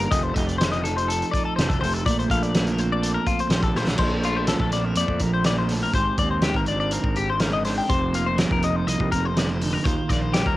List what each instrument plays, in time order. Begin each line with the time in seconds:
Already playing: clean electric guitar D#3 D4
0.00 clean electric guitar A#4, closed hi-hat
0.11 fingered electric bass F1, clean electric guitar F2 A3 D#5, kick, closed hi-hat
0.23 clean electric guitar C5
0.34 fingered electric bass F1, clean electric guitar D#5, kick, closed hi-hat
0.39 clean electric guitar G4
0.47 clean electric guitar D5, closed hi-hat
0.58 clean electric guitar C5, snare, closed hi-hat
0.72 clean electric guitar D#5, closed hi-hat
0.84 clean electric guitar F3 D#4 A4, closed hi-hat
0.97 clean electric guitar C5, closed hi-hat
1.08 clean electric guitar A4, closed hi-hat
1.22 closed hi-hat
1.31 clean electric guitar D5, kick, closed hi-hat
1.36 clean electric guitar D#4
1.45 clean electric guitar A4
1.56 fingered electric bass F1, clean electric guitar C3 A4 C5, snare, closed hi-hat
1.69 clean electric guitar A4, kick, closed hi-hat
1.81 fingered electric bass F1, clean electric guitar A3 C5, open hi-hat
1.94 clean electric guitar A4, closed hi-hat
2.05 fingered electric bass A#1, clean electric guitar A#2 A3 D5, kick, closed hi-hat
2.19 clean electric guitar C5, closed hi-hat
2.30 fingered electric bass A#1, clean electric guitar A4 F5, kick, closed hi-hat
2.43 clean electric guitar D5, closed hi-hat
2.55 snare, closed hi-hat
2.67 clean electric guitar A#4, closed hi-hat
2.78 clean electric guitar F3 C4 C5, closed hi-hat
2.92 clean electric guitar D5
3.02 clean electric guitar A4, closed hi-hat
3.14 clean electric guitar A#4
3.27 clean electric guitar C4 F4, kick, closed hi-hat
3.39 clean electric guitar C5, closed hi-hat
3.50 fingered electric bass A#1, clean electric guitar F2 G4, snare, closed hi-hat
3.63 clean electric guitar A4, kick, closed hi-hat
3.75 fingered electric bass A#1, clean electric guitar A3 C5, snare
3.87 clean electric guitar A4, snare
3.98 fingered electric bass A#1, clean electric guitar A#2 A4 C5, kick, crash
4.23 clean electric guitar A3 F4, closed hi-hat
4.37 clean electric guitar C5
4.47 clean electric guitar F3 A4, snare, closed hi-hat
4.60 fingered electric bass A#1, clean electric guitar A4, kick
4.72 clean electric guitar D5, snare, closed hi-hat
4.77 clean electric guitar C4
4.85 clean electric guitar A#4
4.95 fingered electric bass F2, clean electric guitar D5, closed hi-hat
5.00 clean electric guitar A3
5.08 fingered electric bass F2, kick
5.19 fingered electric bass A#1, clean electric guitar F2 A#4, kick, closed hi-hat
5.34 clean electric guitar C5
5.44 clean electric guitar D5, snare, closed hi-hat
5.49 clean electric guitar A#2
5.59 clean electric guitar C5
5.69 clean electric guitar A4, snare, open hi-hat
5.73 clean electric guitar A2
5.83 clean electric guitar A#4
5.93 fingered electric bass G#1, clean electric guitar G#2 C5, kick, closed hi-hat
5.98 clean electric guitar G4
6.18 fingered electric bass D#2, clean electric guitar D5, kick, closed hi-hat
6.23 clean electric guitar C4
6.31 clean electric guitar C5
6.42 clean electric guitar D#3 G4, snare, closed hi-hat
6.54 fingered electric bass G#1, clean electric guitar A#4, kick
6.66 clean electric guitar D5, closed hi-hat
6.71 clean electric guitar D4
6.80 clean electric guitar D5
6.91 clean electric guitar C4 A#4, closed hi-hat
7.03 fingered electric bass G#1, kick
7.16 clean electric guitar G#2 G4, closed hi-hat
7.30 clean electric guitar C5
7.40 clean electric guitar A#4, snare, closed hi-hat
7.53 clean electric guitar D#5
7.65 clean electric guitar D4 C5, snare, open hi-hat
7.78 clean electric guitar G5
7.88 fingered electric bass F1, clean electric guitar F2 G4 C5, kick, closed hi-hat
8.13 clean electric guitar A#3 F4, closed hi-hat
8.26 clean electric guitar C5
8.36 clean electric guitar F3 A#4, snare, closed hi-hat
8.51 fingered electric bass F1, clean electric guitar A#4, kick
8.63 clean electric guitar D#4 D#5, closed hi-hat
8.76 clean electric guitar C5
8.87 fingered electric bass C2, clean electric guitar A#3 D#5, closed hi-hat
9.00 fingered electric bass C2, kick
9.12 fingered electric bass F1, clean electric guitar C3 A#4, kick, closed hi-hat
9.25 clean electric guitar C5
9.36 clean electric guitar C3 D5, snare, closed hi-hat
9.50 clean electric guitar C5
9.61 clean electric guitar D3 A4, open hi-hat
9.73 clean electric guitar A#4
9.84 fingered electric bass D#2, clean electric guitar D#3 F4 C5, kick, closed hi-hat
10.09 fingered electric bass A#1, clean electric guitar A#3 D5, kick, snare, closed hi-hat
10.21 clean electric guitar C5
10.33 clean electric guitar G3 G4, snare, closed hi-hat
10.46 fingered electric bass D#2, clean electric guitar A#4, kick